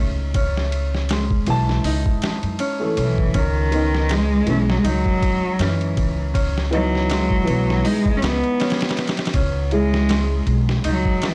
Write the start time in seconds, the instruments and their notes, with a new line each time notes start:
Already playing: upright bass C#2, harp G#3 C#4 D#4
0.34 harp C#4, kick, ride
0.57 snare
0.72 ride
0.95 snare
1.09 harp G#3, snare, ride
1.31 kick
1.47 upright bass B1, upright piano E3 A5, ride
1.69 snare
1.84 upright bass C#2, harp D#4, open hi-hat
2.06 kick
2.22 snare, ride
2.43 upright bass F#2, ride
2.59 harp C#4, ride
2.80 upright piano E3 A3 A4
2.97 upright bass B1, cello E3, harp C#4, ride
3.18 kick
3.34 upright bass C#2, cello D#3, harp C#4, kick, ride
3.71 upright piano D#3 B3 D#4, ride
3.95 snare
4.09 harp G#3, cello G#3, snare, ride
4.47 upright bass B1, upright piano E3 B3 C#4, cello A3, ride
4.59 cello G#3
4.70 cello F#3, snare
4.78 cello G#3
4.84 upright bass C#2, cello F#3, harp D#4, ride
5.06 kick
5.22 kick, ride
5.59 upright bass F#2, cello E3, harp C#4, snare, ride
5.81 ride
5.97 upright bass C#2, kick, ride
6.34 harp C#4, kick, ride
6.58 snare
6.71 upright piano E3 B3 D#4, cello F#3, ride
6.95 snare
7.10 harp G#3, snare, ride
7.31 kick
7.45 upright bass B1, upright piano E3 B3, ride
7.70 snare
7.84 cello G#3, harp D#4, open hi-hat
8.06 kick
8.17 cello C#4
8.22 upright bass C#2, cello B3, snare, ride
8.44 ride
8.60 harp C#4, snare, ride
8.70 snare, ride
8.81 snare, ride
8.89 snare, ride
8.97 snare, ride
9.07 snare, ride
9.17 snare, ride
9.25 snare, ride
9.34 upright bass C#2, harp C#4, kick, ride
9.71 cello G#3, upright piano E4 G#4, ride
9.94 snare
10.09 harp G#3, snare, ride
10.47 upright bass B1, ride
10.69 snare
10.84 upright bass C#2, harp D#4, ride
10.88 cello F#3
11.05 kick
11.22 snare, ride
11.26 cello E3